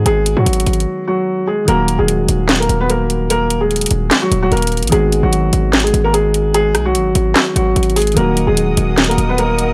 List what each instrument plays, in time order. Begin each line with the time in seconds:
Already playing: synth keys D#3 G#3 B3 F#4
0.06 808-style bass G#1, felt piano G#3 G#4, closed hi-hat
0.26 closed hi-hat
0.37 808-style bass G#2, felt piano F#3 F#4
0.46 808-style bass G#1, closed hi-hat
0.53 closed hi-hat
0.60 closed hi-hat
0.66 808-style bass G#1, closed hi-hat, open hi-hat
0.73 closed hi-hat
0.80 closed hi-hat
1.08 felt piano F#3 F#4
1.47 felt piano G#3 G#4
1.65 808-style bass D#1, synth keys D#3 F#3 A#3, felt piano A#3 A#4, closed hi-hat
1.70 synth keys F#4
1.88 closed hi-hat
1.99 808-style bass D#1, felt piano G#3 G#4
2.08 closed hi-hat
2.29 808-style bass D#1, closed hi-hat
2.49 snare, clap, closed hi-hat
2.56 closed hi-hat
2.60 felt piano A#3 A#4, closed hi-hat
2.69 808-style bass D#1, closed hi-hat
2.81 felt piano B3 B4
2.90 felt piano A#3 A#4, closed hi-hat
3.10 closed hi-hat
3.30 felt piano A#3 A#4, closed hi-hat
3.50 closed hi-hat
3.61 felt piano G#3 G#4
3.71 closed hi-hat
3.76 closed hi-hat
3.81 closed hi-hat
3.86 closed hi-hat
3.91 808-style bass D#1, closed hi-hat
4.11 snare, clap, closed hi-hat
4.22 felt piano F#3 F#4
4.31 808-style bass D#1, closed hi-hat
4.43 felt piano F#3 F#4
4.52 808-style bass D#1, felt piano A#3 A#4, closed hi-hat
4.57 closed hi-hat
4.62 closed hi-hat
4.67 closed hi-hat
4.72 closed hi-hat
4.77 closed hi-hat
4.83 808-style bass A#1, closed hi-hat
4.87 synth keys D#3 G#3, closed hi-hat
4.92 808-style bass G#1, felt piano G#3 G#4, synth keys B3 F#4, closed hi-hat
5.12 closed hi-hat
5.23 808-style bass G#1, felt piano F#3 F#4
5.33 closed hi-hat
5.53 808-style bass G#1, closed hi-hat
5.73 snare, clap, closed hi-hat
5.80 felt piano G#4, closed hi-hat
5.84 felt piano G#3, closed hi-hat
5.94 808-style bass G#1, closed hi-hat
6.04 felt piano A#3 A#4
6.14 felt piano G#3 G#4, closed hi-hat
6.34 closed hi-hat
6.54 felt piano G#3 G#4, closed hi-hat
6.75 808-style bass B1, cross-stick, closed hi-hat
6.85 felt piano F#3 F#4
6.95 808-style bass G#1, closed hi-hat
7.15 808-style bass G#1, closed hi-hat
7.35 snare, clap, closed hi-hat
7.56 808-style bass G#1, felt piano F#3 F#4, closed hi-hat
7.76 808-style bass G#1, closed hi-hat
7.83 closed hi-hat
7.90 closed hi-hat
7.96 felt piano G#3 G#4, closed hi-hat, open hi-hat
8.02 closed hi-hat
8.07 closed hi-hat
8.12 synth keys D#3 F#3, closed hi-hat
8.16 808-style bass D#1, felt piano A#3 A#4, synth keys A#3 F#4, string section A#4 D#5 F#5 D#6, closed hi-hat
8.37 closed hi-hat
8.47 808-style bass D#1, felt piano G#3 G#4
8.57 closed hi-hat
8.77 808-style bass D#1, closed hi-hat
8.98 snare, clap, closed hi-hat
9.04 closed hi-hat
9.09 felt piano A#3 A#4, closed hi-hat
9.18 808-style bass D#1, closed hi-hat
9.29 felt piano B3 B4
9.38 felt piano A#3 A#4, closed hi-hat
9.59 closed hi-hat